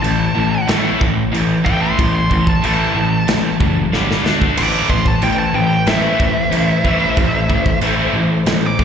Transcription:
0.01 A1 A2 E3 A5, china
0.35 A1 A2 E3
0.67 A1 A2 E3 A3, snare, china
1.01 A1 A2 E3, kick
1.33 A1 A2 E3, china
1.65 A1 A2 E3 A3 G5, kick
1.81 C6
1.99 A1 A2 E3, kick, china
2.16 C6
2.31 A1 A2 E3, kick
2.47 A5, kick
2.64 A1 A2 E3 A3 A5, china
2.95 A1 A2 E3
3.28 A1 A2 E3, snare, china
3.60 F#1 A2 E3, kick
3.93 G1 G2 D3 G3, snare
4.11 snare
4.24 D2 D3 A3 D4, snare
4.42 kick
4.57 A1 A2 E3 A3 E4 B4 C5 D6, china, crash
4.89 A1 A2 E3 C6, kick
5.06 A5, kick
5.22 A1 A2 E3 G5, china
5.39 A5
5.53 A1 A2 E3 G5
5.86 A1 A2 E3 A3 E5, snare, china
6.19 A1 A2 E3, kick
6.50 A1 A2 E3, china
6.84 A1 A2 E3 A3, kick
7.15 A1 A2 E3 A4, kick, china
7.49 A1 A2 E3, kick
7.66 kick
7.81 A1 A2 E3 A3, china
8.13 A1 A2 E3
8.46 A1 A2 E3, snare, china
8.67 D6
8.79 A1 A2 E3, kick

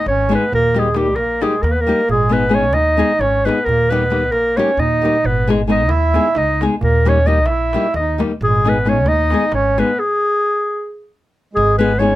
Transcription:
0.06 G#1 C#4 C#5, darbuka tek
0.21 darbuka tek
0.29 G#3 B3 D#4 G#4
0.33 B3 B4, darbuka tek
0.42 darbuka tek
0.52 D#2 A#3 A#4, darbuka dum
0.64 darbuka tek
0.75 G3 G#3 A#3 D#4 G4, darbuka tek
0.79 G#4
0.94 G3 A#3 D#4 G4, darbuka tek
0.99 G3
1.05 darbuka tek
1.15 A#1 A#3 A#4, darbuka tek
1.41 G3 G#3 A#3 D#4 G4 G#4, darbuka tek
1.54 darbuka tek
1.62 D#2 A#4, darbuka tek
1.66 A#3
1.71 B3 B4
1.78 A#3 A#4, darbuka tek
1.87 G3 A#3 D#4 G4
2.00 darbuka tek
2.09 G#1 G#3 G#4, darbuka dum
2.22 darbuka tek
2.29 G#3 B3 D#4 G#4 B4, darbuka tek
2.36 B3
2.49 G#3 B3 D#4 G#4
2.54 C#4 C#5
2.64 darbuka tek
2.72 D#2 D#4 D#5, darbuka tek
2.97 G#3 B3 D#4 G#4, darbuka tek
3.10 darbuka tek
3.19 G#1 C#4 C#5, darbuka tek
3.35 darbuka tek
3.45 G#3 B3 D#4 G#4 B4, darbuka tek
3.49 B3
3.58 darbuka tek
3.64 D#2 A#4
3.69 A#3, darbuka dum
3.80 darbuka tek
3.90 G3 A#3 B3 D#4 G4 B4, darbuka tek
4.03 darbuka tek
4.10 G3 A#3 D#4 G4, darbuka tek
4.22 darbuka tek
4.30 A#1 A#3 A#4, darbuka tek
4.45 darbuka tek
4.57 G3 A#3 C#4 D#4 G4 C#5, darbuka tek
4.69 darbuka tek
4.77 D#2 D#4 D#5, darbuka tek, darbuka dum
4.93 darbuka tek
5.02 G3 A#3 D#4 G4, darbuka tek
5.16 darbuka tek
5.24 G#1 B3 B4, darbuka dum
5.38 darbuka tek
5.48 G#3 B3 D#4 G#4, darbuka tek
5.67 G#3 B3 D#4 G#4 D#5, darbuka tek
5.88 D#2 E4 E5, darbuka tek
6.14 G#3 B3 D#4 G#4, darbuka tek
6.26 darbuka tek
6.35 C#2 D#4 D#5, darbuka tek
6.50 darbuka tek
6.61 G#3 B3 D#4 G#4, darbuka tek
6.71 darbuka tek
6.81 D#2 A#3 A#4, darbuka dum
6.94 darbuka tek
7.05 G3 A#3 C#4 D#4 G4 C#5, darbuka tek
7.26 G3 A#3 D#4 G4 D#5
7.37 darbuka tek
7.46 A#1 E4 E5, darbuka tek
7.73 G3 A#3 D#4 G4, darbuka tek
7.84 darbuka tek
7.94 D#2 D#5, darbuka tek
8.00 D#4
8.08 darbuka tek
8.18 G3 A#3 D#4 G4, darbuka tek
8.31 darbuka tek
8.41 G#1 G#4, darbuka dum
8.46 G#3
8.54 darbuka tek
8.64 G#3 B3 D#4 G#4, darbuka tek
8.69 B3 B4
8.85 G#3 B3 C#4 D#4 G#4 C#5, darbuka tek
8.96 darbuka tek
9.04 D#2 D#4 D#5, darbuka tek
9.30 G#3 B3 D#4 G#4, darbuka tek
9.42 darbuka tek
9.52 G#1 C#4 C#5, darbuka tek
9.65 darbuka tek
9.78 G#3 B3 D#4 G#4 B4, darbuka tek
9.88 darbuka tek
9.99 G#4
11.53 G#1 G#3 G#4
11.78 G#3 B3 D#4 G#4 B4
11.99 G#3 B3 C#4 D#4 G#4 C#5

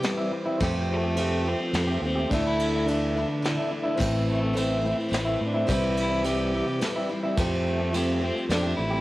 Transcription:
Already playing: E3 G3 C4 E4 G4
0.02 E3 G3 C4 E4 G4 C5, snare, ride
0.18 C4 E4
0.22 G3
0.32 muted clean electric guitar stroke
0.46 G3 C4 E4
0.58 F2 F3 A3 C4 F4 G4 A4 C5, kick, ride
0.62 G3 C4 G4
0.92 A3
1.03 A3 C4 G4
1.16 F3 A3 C4 F4 G4 A4 C5, ride
1.20 G4
1.44 F3 A3 C4 G4
1.48 C4
1.60 muted clean electric guitar stroke
1.71 F2 F3 A3 C4 F4 G4 A4 C5, snare, ride
1.87 A3 C4 G4
2.01 D#2 C4 G4, muted clean electric guitar stroke
2.07 A3
2.16 A3 C4 G4
2.29 D2 D3 E3 A3 D4 E4 A4 D5, kick, ride
2.34 E4
2.46 E4
2.60 ride
2.73 A3 D4 E4
2.86 D3 A3 D4 E4 A4 D5, ride
2.90 E4
3.15 D3 A3 D4 E4
3.29 muted clean electric guitar stroke
3.40 D3 A3 D4 E4 A4 D5, ride
3.45 D4 E4, snare
3.57 A3 D4 E4
3.71 muted clean electric guitar stroke
3.84 A3 D4 E4
3.96 A2 E3 A3 C4 E4 A4 C5
4.00 A1 E3 C4 E4, kick, tambourine, crash
4.16 tambourine
4.29 A3, tambourine
4.41 A3 C4 E4
4.54 A2 E3 A3 C4 E4 A4 C5, ride, tambourine
4.59 C4
4.81 E3 A3 C4 E4
4.86 C4 E4, tambourine
4.98 muted clean electric guitar stroke, tambourine
5.08 A1 E3 A3 C4 E4 A4 C5
5.13 snare, ride, tambourine
5.25 C4 E4
5.29 A3
5.41 A2, muted clean electric guitar stroke
5.46 D4
5.54 A3 C4 E4
5.66 C2 C3 E3 G3 C4 E4 G4 C5, kick, ride
5.70 E3 G3 C4 E4, tambourine
5.84 tambourine
5.97 E4, ride, tambourine
6.09 G3 C4 E4
6.22 C3 E3 G3 C4 E4 G4 C5, ride, tambourine
6.26 E4 G4
6.52 E3 G3 C4 E4, tambourine
6.68 muted clean electric guitar stroke, tambourine
6.79 E3 G3 C4 E4 G4 C5, snare, ride, tambourine
6.96 G3 C4 E4
7.09 G3 C4 E4, muted clean electric guitar stroke
7.23 G3 C4 E4
7.36 F2 F3 G3 A3 C4 F4 G4 A4, kick, ride, tambourine
7.40 C4 G4
7.53 tambourine
7.67 A3, tambourine
7.79 A3 C4 G4
7.92 F3 A3 C4 F4 G4 A4, ride, tambourine
7.97 G4
8.20 F3 A3 C4
8.24 G4
8.36 muted clean electric guitar stroke, tambourine
8.48 F2 F3 A3 C4 D4 F4 G4 A4, snare, ride, tambourine
8.63 A3 C4 G4
8.76 A1 E4, muted clean electric guitar stroke
8.90 A3 C4 G4

